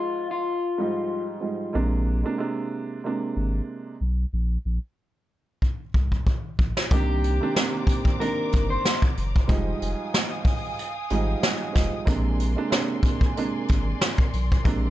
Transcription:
0.00 0.50 G#2 medium
0.00 0.50 F3 medium
0.00 0.51 G#3 medium
0.00 0.51 D#4 loud
0.00 0.29 F4 medium
0.31 1.24 F4 medium
0.78 1.38 G#2 medium
0.78 1.38 F3 medium
0.78 1.39 G3 medium
0.78 1.39 D#4 loud
1.40 1.71 G#2 medium
1.40 1.72 F3 medium
1.40 1.72 G3 medium
1.40 1.73 D#4 medium
1.73 2.24 A#1 loud
1.73 2.19 C3 medium
1.73 2.20 G#3 medium
1.73 2.20 A#3 medium
1.73 2.21 D4 loud
2.23 2.37 C3 medium
2.23 2.37 G#3 medium
2.23 2.38 A#3 medium
2.23 2.39 D4 loud
2.38 2.99 C3 loud
2.38 2.99 G#3 medium
2.38 2.99 A#3 medium
2.38 3.00 D4 loud
3.04 3.94 C3 medium
3.04 3.94 G#3 medium
3.04 3.94 A#3 medium
3.04 3.95 D4 medium
3.36 3.61 G#1 medium
4.01 4.25 B1 medium
4.33 4.57 A#1 loud
4.65 4.79 A#1 medium
5.62 kick medium
5.94 6.19 C2 medium
5.94 kick medium
6.12 kick medium
6.27 kick medium
6.59 6.72 A#1 loud
6.59 kick loud
6.77 snare medium
6.91 7.40 C2 loud
6.91 7.37 C3 loud
6.91 7.37 D#3 medium
6.91 7.37 A#3 medium
6.91 7.38 D4 loud
6.91 8.16 G4 loud
6.91 9.46 C5 medium
6.91 9.46 D5 medium
6.91 9.46 A#5 medium
6.91 9.46 D6 medium
6.91 kick loud
6.91 closed hi-hat medium
7.24 closed hi-hat medium
7.41 7.53 C3 medium
7.41 7.54 D#3 medium
7.41 7.54 A#3 medium
7.41 7.55 D4 loud
7.54 8.15 C3 loud
7.54 8.15 D#3 medium
7.54 8.16 A#3 medium
7.54 8.16 D4 loud
7.54 snare loud
7.54 closed hi-hat loud
7.87 kick loud
7.87 closed hi-hat medium
8.05 kick medium
8.19 9.09 C3 medium
8.19 9.10 D#3 medium
8.19 9.10 A#3 medium
8.19 9.10 D4 loud
8.19 8.67 A#4 medium
8.19 closed hi-hat loud
8.52 8.78 G1 loud
8.52 kick loud
8.52 closed hi-hat medium
8.70 8.99 C5 medium
8.85 snare loud
8.85 closed hi-hat medium
9.02 kick loud
9.17 9.42 F#1 loud
9.17 closed hi-hat medium
9.36 kick medium
9.47 9.74 F1 loud
9.47 10.82 G#2 medium
9.47 10.83 F3 medium
9.47 10.83 G3 medium
9.47 10.83 D#4 loud
9.47 12.05 F5 medium
9.47 12.05 G5 medium
9.47 12.05 G#5 medium
9.47 12.05 D#6 medium
9.47 kick loud
9.47 closed hi-hat medium
9.82 9.95 F1 medium
9.82 closed hi-hat medium
10.14 snare loud
10.14 closed hi-hat loud
10.45 kick loud
10.45 open hi-hat medium
10.79 closed hi-hat loud
11.10 11.35 G#1 medium
11.10 11.70 G#2 medium
11.10 11.71 F3 medium
11.10 11.71 G3 medium
11.10 11.71 D#4 loud
11.10 closed hi-hat medium
11.43 snare loud
11.43 closed hi-hat medium
11.73 11.89 F1 medium
11.73 12.04 G#2 medium
11.73 12.04 F3 medium
11.73 12.04 G3 medium
11.73 12.05 D#4 medium
11.73 kick medium
11.73 snare soft
11.73 closed hi-hat medium
12.05 12.56 A#1 loud
12.05 12.52 C3 loud
12.05 12.52 G#3 medium
12.05 12.53 A#3 loud
12.05 12.53 D4 loud
12.05 14.90 A#4 medium
12.05 14.90 D5 medium
12.05 14.63 G#5 medium
12.05 14.90 C6 medium
12.05 kick loud
12.05 closed hi-hat medium
12.40 closed hi-hat medium
12.56 12.69 C3 medium
12.56 12.70 G#3 medium
12.56 12.70 A#3 medium
12.56 12.71 D4 loud
12.70 13.31 C3 loud
12.70 13.31 G#3 medium
12.70 13.32 A#3 medium
12.70 13.32 D4 loud
12.70 snare loud
12.70 closed hi-hat loud
13.03 kick loud
13.03 closed hi-hat medium
13.21 kick loud
13.36 14.26 C3 medium
13.36 14.26 G#3 medium
13.36 14.27 A#3 medium
13.36 14.27 D4 loud
13.36 closed hi-hat loud
13.68 13.94 G#1 medium
13.68 kick loud
13.68 closed hi-hat medium
14.01 snare loud
14.01 closed hi-hat medium
14.18 kick loud
14.33 14.58 B1 medium
14.33 closed hi-hat medium
14.52 kick medium
14.64 14.90 A#1 loud
14.64 14.90 C3 loud
14.64 14.90 G#3 medium
14.64 14.90 A#3 medium
14.64 14.90 D4 loud
14.64 14.90 A#5 medium
14.64 kick loud
14.64 closed hi-hat medium

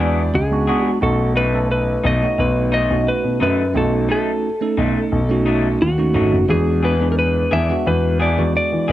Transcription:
0.00 0.27 E2 medium
0.00 0.21 E3 medium
0.00 0.40 G#3 medium
0.00 0.41 B3 medium
0.00 0.21 B3 medium
0.00 0.21 D4 medium
0.00 0.41 D4 medium
0.00 0.41 F#4 medium
0.00 0.20 G#4 medium
0.00 0.37 D5 medium
0.34 0.64 C#2 medium
0.34 0.87 G#4 medium
0.51 0.65 G#3 medium
0.51 0.66 B3 medium
0.51 0.66 D4 medium
0.51 0.66 F#4 medium
0.67 0.90 E3 medium
0.67 0.97 G#3 medium
0.67 0.97 B3 medium
0.67 0.89 B3 medium
0.67 0.89 D4 medium
0.67 0.97 D4 medium
0.67 0.98 F#4 medium
0.67 0.89 G#4 medium
0.87 1.03 F#4 medium
1.01 1.94 B1 loud
1.01 1.45 A3 medium
1.01 1.46 C#4 medium
1.01 1.46 D#4 medium
1.01 1.46 F#4 medium
1.01 1.36 A4 medium
1.36 1.58 F#3 soft
1.36 1.57 A3 medium
1.36 1.57 D#4 medium
1.36 1.70 B4 medium
1.52 2.11 A3 medium
1.52 2.11 C#4 medium
1.52 2.12 D#4 medium
1.52 2.12 A4 medium
1.72 2.06 B4 medium
2.04 2.20 B1 loud
2.04 2.26 F#3 medium
2.04 2.26 A3 medium
2.04 2.25 D#4 medium
2.04 2.41 D#5 medium
2.22 2.80 A3 medium
2.22 2.80 C#4 medium
2.22 2.80 D#4 medium
2.22 2.81 F#4 medium
2.38 2.85 B1 loud
2.38 2.75 B4 medium
2.72 2.94 F#3 medium
2.72 2.94 A3 medium
2.72 2.93 D#4 medium
2.72 3.09 D#5 medium
2.90 3.05 B1 medium
2.90 3.63 A3 medium
2.90 3.63 C#4 medium
2.90 3.63 D#4 medium
2.90 3.64 F#4 medium
3.08 3.41 B4 medium
3.24 3.39 B2 medium
3.40 3.72 F#2 medium
3.40 3.63 F#3 medium
3.40 3.62 A3 medium
3.40 3.62 D#4 medium
3.40 3.77 B4 medium
3.74 4.06 B1 medium
3.74 4.47 A3 medium
3.74 4.48 C#4 medium
3.74 4.48 D#4 medium
3.74 4.48 F#4 medium
3.74 4.10 A4 medium
4.09 4.31 F#3 soft
4.09 4.31 A3 medium
4.09 4.30 D#4 medium
4.09 5.82 A4 loud
4.61 5.19 A3 medium
4.61 5.19 C#4 medium
4.61 5.19 D#4 medium
4.61 5.20 A4 medium
4.77 4.94 B1 medium
4.77 5.00 F#3 medium
4.77 4.99 A3 medium
4.77 4.99 D#4 medium
5.12 5.73 B1 medium
5.29 5.87 A3 medium
5.29 5.88 C#4 medium
5.29 5.88 D#4 medium
5.29 5.88 F#4 medium
5.46 5.68 F#3 medium
5.46 5.68 A3 medium
5.46 5.67 D#4 medium
5.81 6.11 D#2 medium
5.81 6.52 F#4 medium
5.98 6.12 A3 medium
5.98 6.12 C#4 medium
5.98 6.13 D#4 medium
5.98 6.13 F#4 medium
6.14 6.31 G#1 medium
6.14 6.36 F#3 medium
6.14 6.44 A3 medium
6.14 6.36 A3 medium
6.14 6.44 C#4 medium
6.14 6.36 D#4 medium
6.14 6.44 D#4 medium
6.14 6.45 F#4 medium
6.33 6.47 F#1 medium
6.48 7.41 E2 loud
6.48 6.93 G#3 medium
6.48 6.93 B3 medium
6.48 6.93 D4 medium
6.48 6.93 F#4 medium
6.48 6.85 G#4 medium
6.83 7.05 E3 soft
6.83 7.05 B3 medium
6.83 7.04 D4 medium
6.83 7.04 G#4 medium
6.83 7.11 B4 loud
7.00 7.58 G#3 medium
7.00 7.59 B3 medium
7.00 7.59 D4 medium
7.00 7.59 G#4 medium
7.12 7.18 A#4 medium
7.19 7.53 B4 medium
7.51 7.68 E2 medium
7.51 7.73 E3 medium
7.51 7.73 B3 medium
7.51 7.73 D4 medium
7.51 7.72 G#4 medium
7.51 7.88 E5 loud
7.69 8.27 G#3 medium
7.69 8.28 B3 medium
7.69 8.28 D4 medium
7.69 8.28 F#4 medium
7.86 8.33 E2 loud
7.86 8.18 B4 loud
8.20 8.42 E3 medium
8.20 8.41 B3 medium
8.20 8.41 D4 medium
8.20 8.41 G#4 medium
8.20 8.55 D5 medium
8.37 8.53 E2 medium
8.37 8.92 G#3 medium
8.37 8.92 B3 medium
8.37 8.92 D4 medium
8.37 8.92 F#4 medium
8.57 8.91 D5 medium
8.72 8.87 E3 medium
8.88 8.92 B1 medium
8.88 8.92 D4 medium
8.88 8.92 G#4 medium

